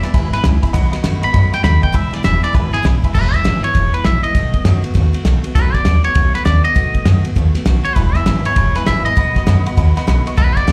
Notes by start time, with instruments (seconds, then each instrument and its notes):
0.03 steel-string acoustic guitar E3 G#3 B3 E4, clean electric guitar D5, honky-tonk piano E5 G#5 B5, muted upright bass stroke, snare, ride
0.14 upright bass G#1, steel-string acoustic guitar E3 G#3 B3 E4, clean electric guitar B4, honky-tonk piano E5 G#5 B5, kick, snare, ride
0.33 steel-string acoustic guitar E3 G#3 B3 E4, clean electric guitar B4, honky-tonk piano E5 G#5 B5, muted upright bass stroke, snare, ride
0.43 upright bass C#2, steel-string acoustic guitar E2 B2 E3 G#3 B3 E4, honky-tonk piano E5 G#5 B5, snare, ride
0.62 steel-string acoustic guitar G#3 B3 E4, honky-tonk piano E5 G#5 B5, kick, ride
0.66 steel-string acoustic guitar E3
0.73 upright bass B1, steel-string acoustic guitar B2 D#3 A3 B3 F#4, honky-tonk piano D#5 F#5 B5, kick, ride
0.92 steel-string acoustic guitar A3 B3 F#4, honky-tonk piano D#5 F#5 B5, muted upright bass stroke, snare, ride
1.03 upright bass F#2, steel-string acoustic guitar B2 D#3 A3 B3 F#4, honky-tonk piano D#5 F#5 B5, snare, ride
1.22 upright bass G#2, steel-string acoustic guitar B3 F#4, honky-tonk piano D#5 F#5 B5, clean electric guitar B5, ride
1.26 steel-string acoustic guitar A3
1.33 upright bass F#2, steel-string acoustic guitar D#3 A3 B3 F#4, honky-tonk piano D#5 F#5 B5, kick, snare, ride
1.52 steel-string acoustic guitar A3 B3 F#4, honky-tonk piano D#5 F#5 B5, clean electric guitar G5, muted upright bass stroke, snare, ride
1.63 upright bass D#2, steel-string acoustic guitar B2 D#3 A3 B3 F#4, honky-tonk piano D#5 F#5 B5, clean electric guitar B5, snare, ride
1.82 steel-string acoustic guitar A3 B3 F#4, honky-tonk piano D#5 F#5 B5, clean electric guitar G5, kick, ride
1.92 upright bass E1, steel-string acoustic guitar E2 B2 E3 G#3 B3 E4, honky-tonk piano E5 G#5 B5, clean electric guitar E5, kick, ride
2.11 upright bass E1, steel-string acoustic guitar E3 G#3 B3 E4, clean electric guitar D5, honky-tonk piano E5 G#5 B5, snare, ride
2.23 upright bass E1, steel-string acoustic guitar E2 B2 E3 G#3 B3 E4, honky-tonk piano E5 G#5 B5, clean electric guitar E5, snare, ride
2.42 steel-string acoustic guitar E3 G#3 B3 E4, clean electric guitar D5, honky-tonk piano E5 G#5 B5, muted upright bass stroke, snare, ride
2.53 upright bass G#1, steel-string acoustic guitar E3 G#3 B3 E4, clean electric guitar B4, honky-tonk piano E5 G#5 B5, kick, snare, ride
2.71 steel-string acoustic guitar E3 G#3 B3 E4, clean electric guitar G#4, honky-tonk piano E5 G#5 B5, muted upright bass stroke, snare, ride
2.82 upright bass B1, steel-string acoustic guitar E2 B2 E3 G#3 B3 E4, honky-tonk piano E5 G#5 B5, snare, ride
3.02 steel-string acoustic guitar E3 G#3 B3 E4, honky-tonk piano E5 G#5 B5, kick, ride
3.14 upright bass E1, steel-string acoustic guitar E2 B2 E3 G#3 B3 E4, clean electric guitar B4, kick, snare, crash
3.33 steel-string acoustic guitar E3 G#3 B3 E4, clean electric guitar E5, kick, snare, ride
3.44 upright bass G#1, steel-string acoustic guitar E2 B2 E3 G#3 B3 E4, snare, ride
3.63 steel-string acoustic guitar E3 G#3 B3 E4, clean electric guitar C#5, muted upright bass stroke, ride
3.74 upright bass E1, steel-string acoustic guitar E3 G#3 B3 E4, kick, snare, ride
3.93 steel-string acoustic guitar E3 G#3 B3 E4, clean electric guitar B4, muted upright bass stroke, ride
4.04 upright bass A#1, steel-string acoustic guitar E2 B2 E3 G#3 B3 E4, clean electric guitar E5, snare, ride
4.23 steel-string acoustic guitar E3 G#3 B3 E4, clean electric guitar D#5, muted upright bass stroke, ride
4.35 upright bass B1, steel-string acoustic guitar B2 D#3 A3 B3 F#4, kick, snare, ride
4.53 upright bass E2, steel-string acoustic guitar A3 B3 F#4, kick, ride
4.64 upright bass F#2, steel-string acoustic guitar B2 D#3 A3 B3 F#4, snare, ride
4.84 steel-string acoustic guitar A3 B3 F#4, muted upright bass stroke, ride
4.94 upright bass D#2, steel-string acoustic guitar D#3 A3 B3 F#4, kick, snare, ride
5.13 steel-string acoustic guitar A3 B3 F#4, muted upright bass stroke, ride
5.25 upright bass B1, steel-string acoustic guitar B2 D#3 A3 B3 F#4, snare, ride
5.44 steel-string acoustic guitar A3 B3 F#4, muted upright bass stroke, ride
5.55 upright bass B1, steel-string acoustic guitar B2 D#3 A3 B3 F#4, clean electric guitar B4, kick, snare, ride
5.74 steel-string acoustic guitar A3 B3 F#4, clean electric guitar D5, muted upright bass stroke, kick, snare, ride
5.85 upright bass D#2, steel-string acoustic guitar B2 D#3 A3 B3 F#4, snare, ride
6.04 steel-string acoustic guitar A3 B3 F#4, clean electric guitar C#5, muted upright bass stroke, ride
6.14 upright bass B1, steel-string acoustic guitar D#3 A3 B3 F#4, kick, ride
6.34 steel-string acoustic guitar A3 B3 F#4, clean electric guitar B4, snare, ride
6.45 upright bass D#2, steel-string acoustic guitar B2 D#3 A3 B3 F#4, clean electric guitar D5, snare, ride
6.64 steel-string acoustic guitar A3 B3 F#4, clean electric guitar D#5, muted upright bass stroke, ride
6.75 upright bass B1, steel-string acoustic guitar B2 D#3 A3 B3 F#4, kick, snare, ride
6.94 upright bass E2, steel-string acoustic guitar A3 B3 F#4, kick, ride
7.05 upright bass F#2, steel-string acoustic guitar B2 D#3 A3 B3 F#4, snare, ride
7.24 steel-string acoustic guitar A3 B3 F#4, ride
7.35 upright bass D#2, steel-string acoustic guitar D#3 A3 B3 F#4, kick, ride
7.54 steel-string acoustic guitar A3 B3 F#4, muted upright bass stroke, snare, ride
7.65 upright bass B1, steel-string acoustic guitar B2 D#3 A3 B3 F#4, snare, ride
7.84 steel-string acoustic guitar A3 B3 F#4, clean electric guitar C#5, ride
7.95 upright bass E1, steel-string acoustic guitar E2 B2 E3 G#3 B3 E4, clean electric guitar B4, honky-tonk piano E5 G#5 B5, kick, snare, ride
8.14 steel-string acoustic guitar E3 G#3 B3 E4, clean electric guitar E5, honky-tonk piano E5 G#5 B5, kick, snare, ride
8.26 upright bass G#1, steel-string acoustic guitar E2 B2 E3 G#3 B3 E4, honky-tonk piano E5 G#5 B5, snare, ride
8.45 steel-string acoustic guitar E3 G#3 B3 E4, clean electric guitar C#5, honky-tonk piano E5 G#5 B5, muted upright bass stroke, ride
8.56 upright bass E1, steel-string acoustic guitar E3 G#3 B3 E4, honky-tonk piano E5 G#5 B5, kick, snare, ride
8.75 steel-string acoustic guitar E3 G#3 B3 E4, clean electric guitar B4, honky-tonk piano E5 G#5 B5, muted upright bass stroke, snare, ride
8.86 upright bass G#1, steel-string acoustic guitar E2 B2 E3 G#3 B3 E4, honky-tonk piano E5 G#5 B5, clean electric guitar E5, snare, ride
9.05 steel-string acoustic guitar E3 G#3 B3 E4, clean electric guitar D#5, honky-tonk piano E5 G#5 B5, muted upright bass stroke, ride
9.16 upright bass B1, steel-string acoustic guitar B2 D#3 A3 B3 F#4, honky-tonk piano D#5 F#5 B5, kick, ride
9.34 upright bass E2, steel-string acoustic guitar A3 B3 F#4, honky-tonk piano D#5 F#5 B5, kick, snare, ride
9.46 upright bass F#2, steel-string acoustic guitar B2 D#3 A3 B3 F#4, honky-tonk piano D#5 F#5 B5, snare, ride
9.66 steel-string acoustic guitar A3 B3 F#4, honky-tonk piano D#5 F#5 B5, muted upright bass stroke, ride
9.77 upright bass D#2, steel-string acoustic guitar D#3 A3 B3 F#4, honky-tonk piano D#5 F#5 B5, kick, ride
9.96 steel-string acoustic guitar A3 B3 F#4, honky-tonk piano D#5 F#5 B5, snare, ride
10.07 upright bass B1, steel-string acoustic guitar B2 D#3 A3 B3 F#4, honky-tonk piano D#5 F#5 B5, snare, ride
10.26 steel-string acoustic guitar A3 B3 F#4, honky-tonk piano D#5 F#5 C#6, ride
10.37 upright bass B1, steel-string acoustic guitar B2 D#3 A3 B3 F#4, clean electric guitar B4, honky-tonk piano D#5 F#5 B5, kick, snare, ride
10.56 steel-string acoustic guitar A3 B3 F#4, clean electric guitar D5, honky-tonk piano D#5 F#5 B5, kick, snare, ride
10.67 upright bass D#2, steel-string acoustic guitar B2 D#3 A3 B3 F#4, honky-tonk piano D#5 F#5 B5, snare, ride